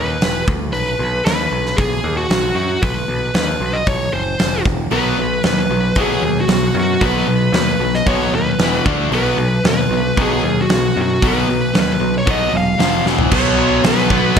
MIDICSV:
0, 0, Header, 1, 5, 480
1, 0, Start_track
1, 0, Key_signature, 5, "major"
1, 0, Tempo, 524017
1, 675, Time_signature, 4, 2, 24, 8
1, 13187, End_track
2, 0, Start_track
2, 0, Title_t, "Lead electric guitar"
2, 0, Program_c, 0, 29
2, 0, Note_on_c, 0, 71, 85
2, 399, Note_off_c, 0, 71, 0
2, 667, Note_on_c, 0, 71, 94
2, 1137, Note_off_c, 0, 71, 0
2, 1148, Note_on_c, 0, 71, 85
2, 1617, Note_on_c, 0, 68, 83
2, 1644, Note_off_c, 0, 71, 0
2, 1987, Note_off_c, 0, 68, 0
2, 1991, Note_on_c, 0, 66, 77
2, 2334, Note_off_c, 0, 66, 0
2, 2345, Note_on_c, 0, 66, 85
2, 2582, Note_on_c, 0, 71, 99
2, 2595, Note_off_c, 0, 66, 0
2, 3062, Note_off_c, 0, 71, 0
2, 3073, Note_on_c, 0, 71, 95
2, 3418, Note_on_c, 0, 75, 88
2, 3441, Note_off_c, 0, 71, 0
2, 3547, Note_off_c, 0, 75, 0
2, 3548, Note_on_c, 0, 73, 95
2, 3783, Note_off_c, 0, 73, 0
2, 3787, Note_on_c, 0, 72, 88
2, 4233, Note_off_c, 0, 72, 0
2, 4508, Note_on_c, 0, 71, 90
2, 4953, Note_off_c, 0, 71, 0
2, 5001, Note_on_c, 0, 71, 83
2, 5488, Note_off_c, 0, 71, 0
2, 5500, Note_on_c, 0, 68, 76
2, 5853, Note_off_c, 0, 68, 0
2, 5873, Note_on_c, 0, 66, 76
2, 6186, Note_off_c, 0, 66, 0
2, 6224, Note_on_c, 0, 66, 79
2, 6452, Note_off_c, 0, 66, 0
2, 6463, Note_on_c, 0, 71, 95
2, 6916, Note_off_c, 0, 71, 0
2, 6927, Note_on_c, 0, 71, 98
2, 7280, Note_on_c, 0, 75, 85
2, 7288, Note_off_c, 0, 71, 0
2, 7386, Note_off_c, 0, 75, 0
2, 7400, Note_on_c, 0, 73, 93
2, 7641, Note_off_c, 0, 73, 0
2, 7648, Note_on_c, 0, 71, 87
2, 8086, Note_off_c, 0, 71, 0
2, 8376, Note_on_c, 0, 71, 85
2, 8854, Note_off_c, 0, 71, 0
2, 8865, Note_on_c, 0, 71, 83
2, 9344, Note_off_c, 0, 71, 0
2, 9366, Note_on_c, 0, 68, 79
2, 9711, Note_off_c, 0, 68, 0
2, 9726, Note_on_c, 0, 66, 83
2, 10071, Note_off_c, 0, 66, 0
2, 10093, Note_on_c, 0, 66, 79
2, 10311, Note_off_c, 0, 66, 0
2, 10328, Note_on_c, 0, 71, 88
2, 10794, Note_off_c, 0, 71, 0
2, 10805, Note_on_c, 0, 71, 86
2, 11119, Note_off_c, 0, 71, 0
2, 11156, Note_on_c, 0, 73, 77
2, 11250, Note_off_c, 0, 73, 0
2, 11273, Note_on_c, 0, 75, 98
2, 11503, Note_off_c, 0, 75, 0
2, 11515, Note_on_c, 0, 77, 95
2, 11946, Note_off_c, 0, 77, 0
2, 12213, Note_on_c, 0, 73, 93
2, 12654, Note_off_c, 0, 73, 0
2, 12707, Note_on_c, 0, 71, 81
2, 13187, Note_off_c, 0, 71, 0
2, 13187, End_track
3, 0, Start_track
3, 0, Title_t, "Distorted electric guitar"
3, 0, Program_c, 1, 30
3, 4502, Note_on_c, 1, 47, 79
3, 4508, Note_on_c, 1, 54, 97
3, 4519, Note_on_c, 1, 59, 86
3, 4730, Note_off_c, 1, 47, 0
3, 4733, Note_off_c, 1, 54, 0
3, 4738, Note_off_c, 1, 59, 0
3, 4751, Note_on_c, 1, 47, 63
3, 4754, Note_on_c, 1, 54, 70
3, 4964, Note_off_c, 1, 47, 0
3, 4966, Note_off_c, 1, 54, 0
3, 4988, Note_on_c, 1, 47, 71
3, 4996, Note_on_c, 1, 54, 76
3, 5203, Note_off_c, 1, 47, 0
3, 5207, Note_off_c, 1, 54, 0
3, 5229, Note_on_c, 1, 47, 59
3, 5232, Note_on_c, 1, 54, 76
3, 5444, Note_off_c, 1, 47, 0
3, 5445, Note_off_c, 1, 54, 0
3, 5459, Note_on_c, 1, 47, 82
3, 5465, Note_on_c, 1, 54, 89
3, 5478, Note_on_c, 1, 59, 99
3, 5688, Note_off_c, 1, 47, 0
3, 5691, Note_off_c, 1, 54, 0
3, 5697, Note_off_c, 1, 59, 0
3, 5709, Note_on_c, 1, 47, 70
3, 5709, Note_on_c, 1, 54, 71
3, 5923, Note_off_c, 1, 47, 0
3, 5924, Note_off_c, 1, 54, 0
3, 5946, Note_on_c, 1, 47, 74
3, 5953, Note_on_c, 1, 54, 75
3, 6162, Note_off_c, 1, 47, 0
3, 6165, Note_off_c, 1, 54, 0
3, 6180, Note_on_c, 1, 47, 62
3, 6181, Note_on_c, 1, 54, 76
3, 6399, Note_off_c, 1, 47, 0
3, 6400, Note_off_c, 1, 54, 0
3, 6427, Note_on_c, 1, 47, 84
3, 6433, Note_on_c, 1, 54, 88
3, 6439, Note_on_c, 1, 59, 87
3, 6652, Note_off_c, 1, 47, 0
3, 6655, Note_off_c, 1, 54, 0
3, 6658, Note_off_c, 1, 59, 0
3, 6666, Note_on_c, 1, 47, 60
3, 6672, Note_on_c, 1, 54, 68
3, 6883, Note_off_c, 1, 47, 0
3, 6885, Note_off_c, 1, 54, 0
3, 6910, Note_on_c, 1, 47, 71
3, 6915, Note_on_c, 1, 54, 78
3, 7125, Note_off_c, 1, 47, 0
3, 7127, Note_off_c, 1, 54, 0
3, 7154, Note_on_c, 1, 47, 69
3, 7160, Note_on_c, 1, 54, 76
3, 7367, Note_off_c, 1, 47, 0
3, 7370, Note_off_c, 1, 54, 0
3, 7392, Note_on_c, 1, 47, 81
3, 7402, Note_on_c, 1, 54, 86
3, 7412, Note_on_c, 1, 59, 100
3, 7616, Note_off_c, 1, 47, 0
3, 7621, Note_off_c, 1, 54, 0
3, 7626, Note_off_c, 1, 59, 0
3, 7647, Note_on_c, 1, 47, 61
3, 7655, Note_on_c, 1, 54, 70
3, 7854, Note_off_c, 1, 47, 0
3, 7858, Note_off_c, 1, 54, 0
3, 7887, Note_on_c, 1, 40, 88
3, 7890, Note_on_c, 1, 47, 93
3, 7895, Note_on_c, 1, 52, 96
3, 8104, Note_off_c, 1, 40, 0
3, 8105, Note_off_c, 1, 47, 0
3, 8108, Note_off_c, 1, 52, 0
3, 8115, Note_on_c, 1, 50, 95
3, 8121, Note_on_c, 1, 57, 96
3, 8126, Note_on_c, 1, 62, 90
3, 8338, Note_off_c, 1, 50, 0
3, 8341, Note_off_c, 1, 57, 0
3, 8344, Note_off_c, 1, 62, 0
3, 8348, Note_on_c, 1, 47, 82
3, 8358, Note_on_c, 1, 54, 79
3, 8366, Note_on_c, 1, 59, 100
3, 8575, Note_off_c, 1, 47, 0
3, 8580, Note_off_c, 1, 54, 0
3, 8584, Note_off_c, 1, 59, 0
3, 8593, Note_on_c, 1, 47, 66
3, 8598, Note_on_c, 1, 54, 82
3, 8808, Note_off_c, 1, 47, 0
3, 8811, Note_off_c, 1, 54, 0
3, 8840, Note_on_c, 1, 47, 67
3, 8844, Note_on_c, 1, 54, 80
3, 9052, Note_off_c, 1, 47, 0
3, 9054, Note_off_c, 1, 54, 0
3, 9094, Note_on_c, 1, 47, 73
3, 9097, Note_on_c, 1, 54, 73
3, 9299, Note_off_c, 1, 47, 0
3, 9301, Note_off_c, 1, 54, 0
3, 9323, Note_on_c, 1, 47, 86
3, 9329, Note_on_c, 1, 54, 87
3, 9330, Note_on_c, 1, 59, 95
3, 9544, Note_off_c, 1, 47, 0
3, 9547, Note_off_c, 1, 54, 0
3, 9548, Note_off_c, 1, 59, 0
3, 9565, Note_on_c, 1, 47, 57
3, 9571, Note_on_c, 1, 54, 72
3, 9776, Note_off_c, 1, 47, 0
3, 9779, Note_off_c, 1, 54, 0
3, 9805, Note_on_c, 1, 47, 74
3, 9806, Note_on_c, 1, 54, 75
3, 10016, Note_off_c, 1, 47, 0
3, 10017, Note_off_c, 1, 54, 0
3, 10046, Note_on_c, 1, 47, 62
3, 10050, Note_on_c, 1, 54, 66
3, 10257, Note_off_c, 1, 47, 0
3, 10259, Note_off_c, 1, 54, 0
3, 10286, Note_on_c, 1, 47, 82
3, 10291, Note_on_c, 1, 54, 89
3, 10298, Note_on_c, 1, 59, 87
3, 10507, Note_off_c, 1, 47, 0
3, 10510, Note_off_c, 1, 54, 0
3, 10513, Note_off_c, 1, 59, 0
3, 10535, Note_on_c, 1, 47, 61
3, 10542, Note_on_c, 1, 54, 77
3, 10743, Note_off_c, 1, 47, 0
3, 10746, Note_off_c, 1, 54, 0
3, 10769, Note_on_c, 1, 47, 80
3, 10770, Note_on_c, 1, 54, 84
3, 10980, Note_off_c, 1, 47, 0
3, 10980, Note_off_c, 1, 54, 0
3, 10997, Note_on_c, 1, 47, 70
3, 11001, Note_on_c, 1, 54, 74
3, 11214, Note_off_c, 1, 47, 0
3, 11216, Note_off_c, 1, 54, 0
3, 11231, Note_on_c, 1, 47, 77
3, 11239, Note_on_c, 1, 54, 91
3, 11243, Note_on_c, 1, 59, 100
3, 11461, Note_off_c, 1, 47, 0
3, 11465, Note_off_c, 1, 54, 0
3, 11467, Note_off_c, 1, 59, 0
3, 11474, Note_on_c, 1, 47, 60
3, 11475, Note_on_c, 1, 54, 72
3, 11693, Note_off_c, 1, 47, 0
3, 11694, Note_off_c, 1, 54, 0
3, 11706, Note_on_c, 1, 41, 80
3, 11716, Note_on_c, 1, 48, 83
3, 11721, Note_on_c, 1, 53, 93
3, 11939, Note_off_c, 1, 41, 0
3, 11944, Note_off_c, 1, 48, 0
3, 11946, Note_off_c, 1, 53, 0
3, 11953, Note_on_c, 1, 40, 75
3, 11957, Note_on_c, 1, 47, 78
3, 11966, Note_on_c, 1, 52, 84
3, 12176, Note_off_c, 1, 47, 0
3, 12183, Note_off_c, 1, 40, 0
3, 12187, Note_on_c, 1, 47, 92
3, 12189, Note_off_c, 1, 52, 0
3, 12209, Note_on_c, 1, 54, 89
3, 12222, Note_on_c, 1, 59, 99
3, 12900, Note_off_c, 1, 47, 0
3, 12901, Note_off_c, 1, 59, 0
3, 12911, Note_off_c, 1, 54, 0
3, 12912, Note_on_c, 1, 59, 90
3, 12931, Note_on_c, 1, 54, 84
3, 12946, Note_on_c, 1, 47, 74
3, 13187, Note_off_c, 1, 47, 0
3, 13187, Note_off_c, 1, 54, 0
3, 13187, Note_off_c, 1, 59, 0
3, 13187, End_track
4, 0, Start_track
4, 0, Title_t, "Picked electric bass"
4, 0, Program_c, 2, 34
4, 0, Note_on_c, 2, 39, 83
4, 148, Note_off_c, 2, 39, 0
4, 191, Note_on_c, 2, 28, 85
4, 385, Note_off_c, 2, 28, 0
4, 437, Note_on_c, 2, 38, 82
4, 674, Note_off_c, 2, 38, 0
4, 674, Note_on_c, 2, 35, 91
4, 867, Note_off_c, 2, 35, 0
4, 910, Note_on_c, 2, 35, 77
4, 1104, Note_off_c, 2, 35, 0
4, 1153, Note_on_c, 2, 39, 82
4, 1346, Note_off_c, 2, 39, 0
4, 1390, Note_on_c, 2, 35, 84
4, 1583, Note_off_c, 2, 35, 0
4, 1630, Note_on_c, 2, 35, 84
4, 1823, Note_off_c, 2, 35, 0
4, 1867, Note_on_c, 2, 39, 87
4, 2061, Note_off_c, 2, 39, 0
4, 2109, Note_on_c, 2, 35, 83
4, 2302, Note_off_c, 2, 35, 0
4, 2335, Note_on_c, 2, 42, 85
4, 2534, Note_off_c, 2, 42, 0
4, 2590, Note_on_c, 2, 35, 83
4, 2782, Note_off_c, 2, 35, 0
4, 2823, Note_on_c, 2, 35, 75
4, 3018, Note_off_c, 2, 35, 0
4, 3063, Note_on_c, 2, 39, 76
4, 3258, Note_off_c, 2, 39, 0
4, 3300, Note_on_c, 2, 35, 87
4, 3496, Note_off_c, 2, 35, 0
4, 3543, Note_on_c, 2, 35, 86
4, 3737, Note_off_c, 2, 35, 0
4, 3789, Note_on_c, 2, 30, 89
4, 3981, Note_off_c, 2, 30, 0
4, 4028, Note_on_c, 2, 29, 81
4, 4220, Note_off_c, 2, 29, 0
4, 4264, Note_on_c, 2, 28, 81
4, 4457, Note_off_c, 2, 28, 0
4, 4503, Note_on_c, 2, 35, 86
4, 4697, Note_off_c, 2, 35, 0
4, 4742, Note_on_c, 2, 35, 70
4, 4936, Note_off_c, 2, 35, 0
4, 4984, Note_on_c, 2, 39, 77
4, 5177, Note_off_c, 2, 39, 0
4, 5219, Note_on_c, 2, 35, 82
4, 5414, Note_off_c, 2, 35, 0
4, 5458, Note_on_c, 2, 35, 86
4, 5653, Note_off_c, 2, 35, 0
4, 5696, Note_on_c, 2, 39, 91
4, 5892, Note_off_c, 2, 39, 0
4, 5938, Note_on_c, 2, 35, 86
4, 6134, Note_off_c, 2, 35, 0
4, 6179, Note_on_c, 2, 42, 84
4, 6375, Note_off_c, 2, 42, 0
4, 6427, Note_on_c, 2, 35, 87
4, 6619, Note_off_c, 2, 35, 0
4, 6656, Note_on_c, 2, 35, 73
4, 6853, Note_off_c, 2, 35, 0
4, 6892, Note_on_c, 2, 39, 82
4, 7091, Note_off_c, 2, 39, 0
4, 7139, Note_on_c, 2, 35, 86
4, 7335, Note_off_c, 2, 35, 0
4, 7386, Note_on_c, 2, 35, 95
4, 7579, Note_off_c, 2, 35, 0
4, 7624, Note_on_c, 2, 39, 85
4, 7818, Note_off_c, 2, 39, 0
4, 7865, Note_on_c, 2, 28, 83
4, 8059, Note_off_c, 2, 28, 0
4, 8114, Note_on_c, 2, 38, 82
4, 8305, Note_off_c, 2, 38, 0
4, 8343, Note_on_c, 2, 35, 88
4, 8539, Note_off_c, 2, 35, 0
4, 8584, Note_on_c, 2, 35, 77
4, 8780, Note_off_c, 2, 35, 0
4, 8831, Note_on_c, 2, 39, 83
4, 9024, Note_off_c, 2, 39, 0
4, 9064, Note_on_c, 2, 35, 82
4, 9260, Note_off_c, 2, 35, 0
4, 9317, Note_on_c, 2, 35, 96
4, 9508, Note_off_c, 2, 35, 0
4, 9554, Note_on_c, 2, 39, 87
4, 9747, Note_off_c, 2, 39, 0
4, 9797, Note_on_c, 2, 35, 79
4, 9989, Note_off_c, 2, 35, 0
4, 10044, Note_on_c, 2, 42, 84
4, 10234, Note_off_c, 2, 42, 0
4, 10279, Note_on_c, 2, 35, 84
4, 10471, Note_off_c, 2, 35, 0
4, 10516, Note_on_c, 2, 35, 70
4, 10710, Note_off_c, 2, 35, 0
4, 10762, Note_on_c, 2, 39, 83
4, 10954, Note_off_c, 2, 39, 0
4, 10992, Note_on_c, 2, 35, 86
4, 11187, Note_off_c, 2, 35, 0
4, 11236, Note_on_c, 2, 35, 92
4, 11430, Note_off_c, 2, 35, 0
4, 11484, Note_on_c, 2, 28, 85
4, 11675, Note_off_c, 2, 28, 0
4, 11719, Note_on_c, 2, 29, 77
4, 11912, Note_off_c, 2, 29, 0
4, 11953, Note_on_c, 2, 28, 83
4, 12149, Note_off_c, 2, 28, 0
4, 12201, Note_on_c, 2, 35, 91
4, 12424, Note_off_c, 2, 35, 0
4, 12438, Note_on_c, 2, 35, 85
4, 12660, Note_off_c, 2, 35, 0
4, 12665, Note_on_c, 2, 35, 87
4, 12896, Note_off_c, 2, 35, 0
4, 12920, Note_on_c, 2, 35, 97
4, 13144, Note_off_c, 2, 35, 0
4, 13187, End_track
5, 0, Start_track
5, 0, Title_t, "Drums"
5, 196, Note_on_c, 9, 46, 51
5, 203, Note_on_c, 9, 38, 107
5, 288, Note_off_c, 9, 46, 0
5, 294, Note_off_c, 9, 38, 0
5, 437, Note_on_c, 9, 36, 97
5, 529, Note_off_c, 9, 36, 0
5, 677, Note_on_c, 9, 46, 49
5, 768, Note_off_c, 9, 46, 0
5, 1154, Note_on_c, 9, 46, 56
5, 1160, Note_on_c, 9, 38, 106
5, 1246, Note_off_c, 9, 46, 0
5, 1252, Note_off_c, 9, 38, 0
5, 1517, Note_on_c, 9, 38, 30
5, 1609, Note_off_c, 9, 38, 0
5, 1631, Note_on_c, 9, 46, 51
5, 1633, Note_on_c, 9, 36, 103
5, 1723, Note_off_c, 9, 46, 0
5, 1725, Note_off_c, 9, 36, 0
5, 2109, Note_on_c, 9, 46, 54
5, 2116, Note_on_c, 9, 38, 104
5, 2201, Note_off_c, 9, 46, 0
5, 2207, Note_off_c, 9, 38, 0
5, 2587, Note_on_c, 9, 46, 53
5, 2590, Note_on_c, 9, 36, 101
5, 2678, Note_off_c, 9, 46, 0
5, 2681, Note_off_c, 9, 36, 0
5, 3062, Note_on_c, 9, 46, 53
5, 3068, Note_on_c, 9, 38, 101
5, 3153, Note_off_c, 9, 46, 0
5, 3160, Note_off_c, 9, 38, 0
5, 3540, Note_on_c, 9, 46, 54
5, 3545, Note_on_c, 9, 36, 107
5, 3631, Note_off_c, 9, 46, 0
5, 3637, Note_off_c, 9, 36, 0
5, 4023, Note_on_c, 9, 46, 52
5, 4029, Note_on_c, 9, 38, 103
5, 4114, Note_off_c, 9, 46, 0
5, 4121, Note_off_c, 9, 38, 0
5, 4264, Note_on_c, 9, 36, 95
5, 4355, Note_off_c, 9, 36, 0
5, 4496, Note_on_c, 9, 46, 50
5, 4588, Note_off_c, 9, 46, 0
5, 4976, Note_on_c, 9, 46, 52
5, 4983, Note_on_c, 9, 38, 107
5, 5068, Note_off_c, 9, 46, 0
5, 5074, Note_off_c, 9, 38, 0
5, 5452, Note_on_c, 9, 46, 54
5, 5461, Note_on_c, 9, 36, 103
5, 5544, Note_off_c, 9, 46, 0
5, 5552, Note_off_c, 9, 36, 0
5, 5938, Note_on_c, 9, 46, 56
5, 5945, Note_on_c, 9, 38, 102
5, 6030, Note_off_c, 9, 46, 0
5, 6036, Note_off_c, 9, 38, 0
5, 6421, Note_on_c, 9, 46, 55
5, 6424, Note_on_c, 9, 36, 95
5, 6512, Note_off_c, 9, 46, 0
5, 6515, Note_off_c, 9, 36, 0
5, 6903, Note_on_c, 9, 46, 54
5, 6909, Note_on_c, 9, 38, 99
5, 6995, Note_off_c, 9, 46, 0
5, 7001, Note_off_c, 9, 38, 0
5, 7273, Note_on_c, 9, 38, 31
5, 7365, Note_off_c, 9, 38, 0
5, 7386, Note_on_c, 9, 46, 56
5, 7388, Note_on_c, 9, 36, 102
5, 7478, Note_off_c, 9, 46, 0
5, 7480, Note_off_c, 9, 36, 0
5, 7868, Note_on_c, 9, 46, 55
5, 7874, Note_on_c, 9, 38, 104
5, 7959, Note_off_c, 9, 46, 0
5, 7966, Note_off_c, 9, 38, 0
5, 8114, Note_on_c, 9, 36, 104
5, 8206, Note_off_c, 9, 36, 0
5, 8354, Note_on_c, 9, 46, 48
5, 8445, Note_off_c, 9, 46, 0
5, 8834, Note_on_c, 9, 46, 52
5, 8841, Note_on_c, 9, 38, 109
5, 8926, Note_off_c, 9, 46, 0
5, 8932, Note_off_c, 9, 38, 0
5, 9318, Note_on_c, 9, 46, 52
5, 9319, Note_on_c, 9, 36, 104
5, 9410, Note_off_c, 9, 46, 0
5, 9411, Note_off_c, 9, 36, 0
5, 9796, Note_on_c, 9, 46, 51
5, 9803, Note_on_c, 9, 38, 109
5, 9888, Note_off_c, 9, 46, 0
5, 9894, Note_off_c, 9, 38, 0
5, 10281, Note_on_c, 9, 36, 98
5, 10281, Note_on_c, 9, 46, 55
5, 10373, Note_off_c, 9, 36, 0
5, 10373, Note_off_c, 9, 46, 0
5, 10759, Note_on_c, 9, 46, 53
5, 10765, Note_on_c, 9, 38, 110
5, 10850, Note_off_c, 9, 46, 0
5, 10857, Note_off_c, 9, 38, 0
5, 11241, Note_on_c, 9, 36, 110
5, 11242, Note_on_c, 9, 46, 58
5, 11333, Note_off_c, 9, 36, 0
5, 11333, Note_off_c, 9, 46, 0
5, 11721, Note_on_c, 9, 46, 52
5, 11728, Note_on_c, 9, 38, 103
5, 11813, Note_off_c, 9, 46, 0
5, 11819, Note_off_c, 9, 38, 0
5, 11964, Note_on_c, 9, 38, 60
5, 12055, Note_off_c, 9, 38, 0
5, 12078, Note_on_c, 9, 43, 82
5, 12169, Note_off_c, 9, 43, 0
5, 12196, Note_on_c, 9, 49, 113
5, 12199, Note_on_c, 9, 36, 108
5, 12288, Note_off_c, 9, 49, 0
5, 12291, Note_off_c, 9, 36, 0
5, 12677, Note_on_c, 9, 46, 63
5, 12683, Note_on_c, 9, 38, 117
5, 12768, Note_off_c, 9, 46, 0
5, 12775, Note_off_c, 9, 38, 0
5, 12802, Note_on_c, 9, 38, 31
5, 12894, Note_off_c, 9, 38, 0
5, 12919, Note_on_c, 9, 36, 93
5, 13010, Note_off_c, 9, 36, 0
5, 13155, Note_on_c, 9, 46, 66
5, 13187, Note_off_c, 9, 46, 0
5, 13187, End_track
0, 0, End_of_file